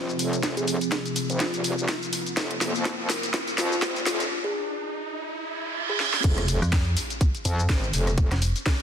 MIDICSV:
0, 0, Header, 1, 9, 480
1, 0, Start_track
1, 0, Key_signature, -4, "minor"
1, 0, Tempo, 483871
1, 431, Time_signature, 4, 2, 24, 8
1, 8750, End_track
2, 0, Start_track
2, 0, Title_t, "Kalimba"
2, 0, Program_c, 0, 108
2, 566, Note_on_c, 0, 68, 93
2, 779, Note_off_c, 0, 68, 0
2, 1390, Note_on_c, 0, 65, 83
2, 2069, Note_off_c, 0, 65, 0
2, 3551, Note_on_c, 0, 65, 89
2, 3638, Note_off_c, 0, 65, 0
2, 3687, Note_on_c, 0, 65, 76
2, 3753, Note_off_c, 0, 65, 0
2, 4406, Note_on_c, 0, 68, 91
2, 4619, Note_off_c, 0, 68, 0
2, 5847, Note_on_c, 0, 68, 93
2, 6191, Note_off_c, 0, 68, 0
2, 8750, End_track
3, 0, Start_track
3, 0, Title_t, "Analog synth pad"
3, 0, Program_c, 1, 89
3, 0, Note_on_c, 1, 48, 75
3, 0, Note_on_c, 1, 53, 69
3, 0, Note_on_c, 1, 60, 88
3, 2311, Note_off_c, 1, 60, 0
3, 2349, Note_on_c, 1, 58, 90
3, 4230, Note_off_c, 1, 48, 0
3, 4230, Note_off_c, 1, 53, 0
3, 4251, Note_off_c, 1, 58, 0
3, 6190, Note_on_c, 1, 48, 80
3, 6190, Note_on_c, 1, 60, 95
3, 6191, Note_on_c, 1, 53, 75
3, 8750, Note_off_c, 1, 48, 0
3, 8750, Note_off_c, 1, 53, 0
3, 8750, Note_off_c, 1, 60, 0
3, 8750, End_track
4, 0, Start_track
4, 0, Title_t, "FM bass"
4, 0, Program_c, 2, 39
4, 6567, Note_on_c, 2, 41, 95
4, 6894, Note_off_c, 2, 41, 0
4, 8248, Note_on_c, 2, 29, 98
4, 8466, Note_off_c, 2, 29, 0
4, 8750, End_track
5, 0, Start_track
5, 0, Title_t, "Wobble bass"
5, 0, Program_c, 3, 39
5, 0, Note_on_c, 3, 32, 91
5, 174, Note_off_c, 3, 32, 0
5, 191, Note_on_c, 3, 29, 90
5, 545, Note_off_c, 3, 29, 0
5, 567, Note_on_c, 3, 29, 90
5, 785, Note_off_c, 3, 29, 0
5, 1287, Note_on_c, 3, 32, 95
5, 1505, Note_off_c, 3, 32, 0
5, 1526, Note_on_c, 3, 27, 93
5, 1745, Note_off_c, 3, 27, 0
5, 1767, Note_on_c, 3, 27, 96
5, 1854, Note_off_c, 3, 27, 0
5, 2350, Note_on_c, 3, 29, 99
5, 2705, Note_off_c, 3, 29, 0
5, 2727, Note_on_c, 3, 41, 94
5, 3054, Note_off_c, 3, 41, 0
5, 3551, Note_on_c, 3, 41, 99
5, 3774, Note_off_c, 3, 41, 0
5, 3790, Note_on_c, 3, 32, 97
5, 4014, Note_off_c, 3, 32, 0
5, 4032, Note_on_c, 3, 29, 96
5, 4271, Note_off_c, 3, 29, 0
5, 6191, Note_on_c, 3, 29, 95
5, 6545, Note_off_c, 3, 29, 0
5, 7391, Note_on_c, 3, 41, 96
5, 7614, Note_off_c, 3, 41, 0
5, 7631, Note_on_c, 3, 32, 90
5, 7854, Note_off_c, 3, 32, 0
5, 7871, Note_on_c, 3, 29, 99
5, 8225, Note_off_c, 3, 29, 0
5, 8750, End_track
6, 0, Start_track
6, 0, Title_t, "Reverse cymbal"
6, 0, Program_c, 4, 119
6, 5231, Note_on_c, 4, 60, 76
6, 6191, Note_off_c, 4, 60, 0
6, 8750, End_track
7, 0, Start_track
7, 0, Title_t, "Riser"
7, 0, Program_c, 5, 103
7, 0, Note_on_c, 5, 60, 74
7, 6190, Note_off_c, 5, 60, 0
7, 8750, End_track
8, 0, Start_track
8, 0, Title_t, "Sub drop"
8, 0, Program_c, 6, 103
8, 6191, Note_on_c, 6, 60, 75
8, 8111, Note_off_c, 6, 60, 0
8, 8750, End_track
9, 0, Start_track
9, 0, Title_t, "Drums"
9, 90, Note_on_c, 9, 82, 31
9, 189, Note_off_c, 9, 82, 0
9, 191, Note_on_c, 9, 46, 97
9, 193, Note_on_c, 9, 82, 72
9, 290, Note_off_c, 9, 46, 0
9, 293, Note_off_c, 9, 82, 0
9, 327, Note_on_c, 9, 42, 35
9, 330, Note_on_c, 9, 82, 32
9, 427, Note_off_c, 9, 42, 0
9, 429, Note_off_c, 9, 82, 0
9, 430, Note_on_c, 9, 36, 121
9, 431, Note_on_c, 9, 38, 57
9, 431, Note_on_c, 9, 42, 79
9, 434, Note_on_c, 9, 82, 43
9, 529, Note_off_c, 9, 36, 0
9, 530, Note_off_c, 9, 38, 0
9, 530, Note_off_c, 9, 42, 0
9, 533, Note_off_c, 9, 82, 0
9, 567, Note_on_c, 9, 42, 47
9, 570, Note_on_c, 9, 82, 29
9, 666, Note_off_c, 9, 42, 0
9, 669, Note_off_c, 9, 82, 0
9, 671, Note_on_c, 9, 46, 101
9, 673, Note_on_c, 9, 82, 71
9, 770, Note_off_c, 9, 46, 0
9, 772, Note_off_c, 9, 82, 0
9, 807, Note_on_c, 9, 42, 35
9, 810, Note_on_c, 9, 82, 31
9, 906, Note_off_c, 9, 42, 0
9, 909, Note_off_c, 9, 82, 0
9, 910, Note_on_c, 9, 36, 120
9, 910, Note_on_c, 9, 38, 58
9, 910, Note_on_c, 9, 42, 75
9, 913, Note_on_c, 9, 82, 42
9, 1009, Note_off_c, 9, 36, 0
9, 1009, Note_off_c, 9, 38, 0
9, 1009, Note_off_c, 9, 42, 0
9, 1012, Note_off_c, 9, 82, 0
9, 1047, Note_on_c, 9, 42, 36
9, 1049, Note_on_c, 9, 82, 29
9, 1146, Note_off_c, 9, 42, 0
9, 1149, Note_off_c, 9, 82, 0
9, 1150, Note_on_c, 9, 46, 107
9, 1153, Note_on_c, 9, 82, 71
9, 1250, Note_off_c, 9, 46, 0
9, 1252, Note_off_c, 9, 82, 0
9, 1287, Note_on_c, 9, 42, 50
9, 1289, Note_on_c, 9, 82, 29
9, 1386, Note_off_c, 9, 42, 0
9, 1388, Note_off_c, 9, 82, 0
9, 1390, Note_on_c, 9, 36, 120
9, 1390, Note_on_c, 9, 38, 67
9, 1390, Note_on_c, 9, 42, 78
9, 1392, Note_on_c, 9, 82, 41
9, 1489, Note_off_c, 9, 36, 0
9, 1489, Note_off_c, 9, 38, 0
9, 1489, Note_off_c, 9, 42, 0
9, 1491, Note_off_c, 9, 82, 0
9, 1526, Note_on_c, 9, 42, 33
9, 1529, Note_on_c, 9, 82, 28
9, 1625, Note_off_c, 9, 42, 0
9, 1628, Note_off_c, 9, 82, 0
9, 1630, Note_on_c, 9, 46, 101
9, 1632, Note_on_c, 9, 82, 67
9, 1729, Note_off_c, 9, 46, 0
9, 1731, Note_off_c, 9, 82, 0
9, 1769, Note_on_c, 9, 82, 31
9, 1868, Note_off_c, 9, 82, 0
9, 1870, Note_on_c, 9, 36, 118
9, 1870, Note_on_c, 9, 38, 69
9, 1870, Note_on_c, 9, 42, 78
9, 1873, Note_on_c, 9, 82, 43
9, 1969, Note_off_c, 9, 36, 0
9, 1969, Note_off_c, 9, 38, 0
9, 1969, Note_off_c, 9, 42, 0
9, 1972, Note_off_c, 9, 82, 0
9, 2009, Note_on_c, 9, 82, 31
9, 2108, Note_off_c, 9, 82, 0
9, 2110, Note_on_c, 9, 46, 105
9, 2113, Note_on_c, 9, 82, 71
9, 2209, Note_off_c, 9, 46, 0
9, 2212, Note_off_c, 9, 82, 0
9, 2247, Note_on_c, 9, 42, 36
9, 2249, Note_on_c, 9, 82, 32
9, 2346, Note_off_c, 9, 42, 0
9, 2348, Note_off_c, 9, 82, 0
9, 2350, Note_on_c, 9, 36, 127
9, 2351, Note_on_c, 9, 38, 70
9, 2351, Note_on_c, 9, 42, 74
9, 2353, Note_on_c, 9, 82, 42
9, 2449, Note_off_c, 9, 36, 0
9, 2450, Note_off_c, 9, 38, 0
9, 2450, Note_off_c, 9, 42, 0
9, 2453, Note_off_c, 9, 82, 0
9, 2486, Note_on_c, 9, 42, 47
9, 2586, Note_off_c, 9, 42, 0
9, 2591, Note_on_c, 9, 38, 70
9, 2591, Note_on_c, 9, 46, 105
9, 2594, Note_on_c, 9, 82, 75
9, 2690, Note_off_c, 9, 38, 0
9, 2690, Note_off_c, 9, 46, 0
9, 2693, Note_off_c, 9, 82, 0
9, 2730, Note_on_c, 9, 82, 31
9, 2829, Note_off_c, 9, 82, 0
9, 2830, Note_on_c, 9, 36, 118
9, 2831, Note_on_c, 9, 38, 74
9, 2831, Note_on_c, 9, 42, 78
9, 2833, Note_on_c, 9, 82, 40
9, 2929, Note_off_c, 9, 36, 0
9, 2930, Note_off_c, 9, 38, 0
9, 2930, Note_off_c, 9, 42, 0
9, 2933, Note_off_c, 9, 82, 0
9, 3071, Note_on_c, 9, 38, 75
9, 3071, Note_on_c, 9, 46, 109
9, 3074, Note_on_c, 9, 82, 73
9, 3170, Note_off_c, 9, 38, 0
9, 3170, Note_off_c, 9, 46, 0
9, 3173, Note_off_c, 9, 82, 0
9, 3207, Note_on_c, 9, 42, 49
9, 3210, Note_on_c, 9, 82, 30
9, 3307, Note_off_c, 9, 42, 0
9, 3309, Note_off_c, 9, 82, 0
9, 3310, Note_on_c, 9, 36, 117
9, 3311, Note_on_c, 9, 38, 84
9, 3311, Note_on_c, 9, 42, 74
9, 3314, Note_on_c, 9, 82, 42
9, 3410, Note_off_c, 9, 36, 0
9, 3410, Note_off_c, 9, 38, 0
9, 3410, Note_off_c, 9, 42, 0
9, 3413, Note_off_c, 9, 82, 0
9, 3447, Note_on_c, 9, 42, 33
9, 3450, Note_on_c, 9, 82, 28
9, 3546, Note_off_c, 9, 42, 0
9, 3549, Note_off_c, 9, 82, 0
9, 3551, Note_on_c, 9, 38, 83
9, 3551, Note_on_c, 9, 46, 105
9, 3554, Note_on_c, 9, 82, 74
9, 3650, Note_off_c, 9, 38, 0
9, 3650, Note_off_c, 9, 46, 0
9, 3653, Note_off_c, 9, 82, 0
9, 3690, Note_on_c, 9, 82, 32
9, 3789, Note_off_c, 9, 82, 0
9, 3790, Note_on_c, 9, 36, 121
9, 3791, Note_on_c, 9, 38, 88
9, 3791, Note_on_c, 9, 42, 75
9, 3794, Note_on_c, 9, 82, 44
9, 3889, Note_off_c, 9, 36, 0
9, 3890, Note_off_c, 9, 38, 0
9, 3890, Note_off_c, 9, 42, 0
9, 3893, Note_off_c, 9, 82, 0
9, 3930, Note_on_c, 9, 82, 32
9, 4029, Note_off_c, 9, 82, 0
9, 4032, Note_on_c, 9, 38, 86
9, 4032, Note_on_c, 9, 46, 105
9, 4034, Note_on_c, 9, 82, 73
9, 4131, Note_off_c, 9, 38, 0
9, 4131, Note_off_c, 9, 46, 0
9, 4133, Note_off_c, 9, 82, 0
9, 4168, Note_on_c, 9, 42, 34
9, 4171, Note_on_c, 9, 82, 30
9, 4267, Note_off_c, 9, 42, 0
9, 4270, Note_off_c, 9, 82, 0
9, 5951, Note_on_c, 9, 38, 62
9, 6051, Note_off_c, 9, 38, 0
9, 6087, Note_on_c, 9, 38, 73
9, 6186, Note_off_c, 9, 38, 0
9, 6191, Note_on_c, 9, 36, 123
9, 6191, Note_on_c, 9, 42, 80
9, 6191, Note_on_c, 9, 49, 102
9, 6193, Note_on_c, 9, 82, 45
9, 6290, Note_off_c, 9, 36, 0
9, 6290, Note_off_c, 9, 42, 0
9, 6290, Note_off_c, 9, 49, 0
9, 6292, Note_off_c, 9, 82, 0
9, 6327, Note_on_c, 9, 37, 57
9, 6327, Note_on_c, 9, 42, 54
9, 6426, Note_off_c, 9, 37, 0
9, 6426, Note_off_c, 9, 42, 0
9, 6431, Note_on_c, 9, 46, 106
9, 6434, Note_on_c, 9, 82, 80
9, 6530, Note_off_c, 9, 46, 0
9, 6533, Note_off_c, 9, 82, 0
9, 6570, Note_on_c, 9, 82, 32
9, 6670, Note_off_c, 9, 82, 0
9, 6671, Note_on_c, 9, 36, 113
9, 6671, Note_on_c, 9, 42, 83
9, 6674, Note_on_c, 9, 82, 45
9, 6675, Note_on_c, 9, 38, 122
9, 6770, Note_off_c, 9, 36, 0
9, 6770, Note_off_c, 9, 42, 0
9, 6773, Note_off_c, 9, 82, 0
9, 6774, Note_off_c, 9, 38, 0
9, 6911, Note_on_c, 9, 46, 109
9, 6913, Note_on_c, 9, 82, 76
9, 7010, Note_off_c, 9, 46, 0
9, 7013, Note_off_c, 9, 82, 0
9, 7047, Note_on_c, 9, 42, 53
9, 7050, Note_on_c, 9, 82, 33
9, 7146, Note_off_c, 9, 42, 0
9, 7149, Note_off_c, 9, 82, 0
9, 7151, Note_on_c, 9, 36, 112
9, 7151, Note_on_c, 9, 42, 80
9, 7154, Note_on_c, 9, 82, 46
9, 7250, Note_off_c, 9, 36, 0
9, 7251, Note_off_c, 9, 42, 0
9, 7253, Note_off_c, 9, 82, 0
9, 7288, Note_on_c, 9, 42, 37
9, 7290, Note_on_c, 9, 82, 30
9, 7387, Note_off_c, 9, 42, 0
9, 7389, Note_off_c, 9, 82, 0
9, 7391, Note_on_c, 9, 46, 100
9, 7394, Note_on_c, 9, 82, 74
9, 7490, Note_off_c, 9, 46, 0
9, 7493, Note_off_c, 9, 82, 0
9, 7530, Note_on_c, 9, 82, 33
9, 7629, Note_off_c, 9, 82, 0
9, 7631, Note_on_c, 9, 36, 118
9, 7631, Note_on_c, 9, 42, 84
9, 7634, Note_on_c, 9, 82, 47
9, 7635, Note_on_c, 9, 38, 127
9, 7730, Note_off_c, 9, 36, 0
9, 7731, Note_off_c, 9, 42, 0
9, 7733, Note_off_c, 9, 82, 0
9, 7735, Note_off_c, 9, 38, 0
9, 7770, Note_on_c, 9, 82, 34
9, 7869, Note_off_c, 9, 82, 0
9, 7871, Note_on_c, 9, 46, 104
9, 7874, Note_on_c, 9, 82, 75
9, 7970, Note_off_c, 9, 46, 0
9, 7973, Note_off_c, 9, 82, 0
9, 8008, Note_on_c, 9, 37, 60
9, 8008, Note_on_c, 9, 42, 39
9, 8010, Note_on_c, 9, 82, 32
9, 8107, Note_off_c, 9, 37, 0
9, 8107, Note_off_c, 9, 42, 0
9, 8110, Note_off_c, 9, 82, 0
9, 8111, Note_on_c, 9, 36, 127
9, 8112, Note_on_c, 9, 42, 78
9, 8114, Note_on_c, 9, 82, 43
9, 8210, Note_off_c, 9, 36, 0
9, 8211, Note_off_c, 9, 42, 0
9, 8213, Note_off_c, 9, 82, 0
9, 8248, Note_on_c, 9, 37, 56
9, 8248, Note_on_c, 9, 42, 53
9, 8252, Note_on_c, 9, 38, 37
9, 8347, Note_off_c, 9, 37, 0
9, 8347, Note_off_c, 9, 42, 0
9, 8351, Note_off_c, 9, 38, 0
9, 8351, Note_on_c, 9, 46, 109
9, 8354, Note_on_c, 9, 82, 74
9, 8451, Note_off_c, 9, 46, 0
9, 8453, Note_off_c, 9, 82, 0
9, 8488, Note_on_c, 9, 42, 37
9, 8491, Note_on_c, 9, 82, 32
9, 8588, Note_off_c, 9, 42, 0
9, 8590, Note_off_c, 9, 82, 0
9, 8591, Note_on_c, 9, 36, 119
9, 8592, Note_on_c, 9, 42, 80
9, 8595, Note_on_c, 9, 82, 41
9, 8596, Note_on_c, 9, 38, 124
9, 8690, Note_off_c, 9, 36, 0
9, 8691, Note_off_c, 9, 42, 0
9, 8694, Note_off_c, 9, 82, 0
9, 8695, Note_off_c, 9, 38, 0
9, 8750, End_track
0, 0, End_of_file